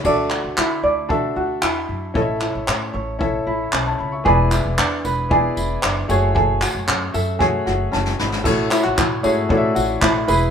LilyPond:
<<
  \new Staff \with { instrumentName = "Felt piano" } { \time 4/4 \key a \major \tempo 4 = 114 << { r1 | r2. r16 <cis'' a''>16 b''16 <e'' cis'''>16~ | <e'' cis'''>16 r2. r8. | r4. e''8 fis''4 a''8 b''8 |
r1 | } \\ { <d' fis' a' e''>4 r4 <d' fis' a' e''>4 r4 | <cis' e' a' dis'' e''>4 r4 <cis' e' a' e''>4 r4 | <b e' gis' d''>4 r4 <b e' gis' d''>4 r8 <a fis' gis' cis''>8~ | <a fis' gis' cis''>4 r4 <a fis' gis' cis''>4 r4 |
<a cis' e' fis' cis''>4 r8 <a cis' e' fis' gis'>8 <a cis' e' fis' d'' e''>4 r8 <e' gis' b'>8 | } >> }
  \new Staff \with { instrumentName = "Ukulele" } { \time 4/4 \key a \major <a' d''>8 fis'8 e'8 d''8 a'8 fis'8 e'4 | <a' cis''>8 e'8 cis'8 cis''8 a'8 e'8 cis'4 | <gis' b'>8 e'8 d'8 b'8 gis'8 e'8 d'8 gis'8 | <gis' a'>8 fis'8 cis'8 a'8 gis'8 fis'8 cis'4 |
a'8 e'16 fis'16 e'8 cis''8 a'8 fis'8 e'8 b'8 | }
  \new Staff \with { instrumentName = "Upright bass" } { \clef bass \time 4/4 \key a \major d,8. d,16 d8 d,4 d,8 e,8 fis,8 | a,,8. a,,16 a,8 a,,4 a,,8 b,,8 cis,8 | e,,8. e,,16 e,8 e,,4 e,,8 fis,,8 fis,,8~ | fis,,8. fis,,16 fis,8 fis,4 fis,,8 fis,,8 gis,,8 |
a,,8 r16 a,,16 a,8 gis,8 a,8 a,,8 a,,8 e,,8 | }
  \new DrumStaff \with { instrumentName = "Drums" } \drummode { \time 4/4 <cymc bd>8 hc8 hc4 bd4 hc4 | bd8 hc8 hc4 bd4 hc4 | bd8 <hc tamb>8 hc8 tamb8 bd8 tamb8 hc8 tamb8 | bd8 <hc tamb>8 hc8 tamb8 <bd sn>8 sn8 sn16 sn16 sn16 sn16 |
<cymc bd>8 <hc tamb>8 <hc bd>8 tamb8 bd8 tamb8 <hc bd>8 tamb8 | }
>>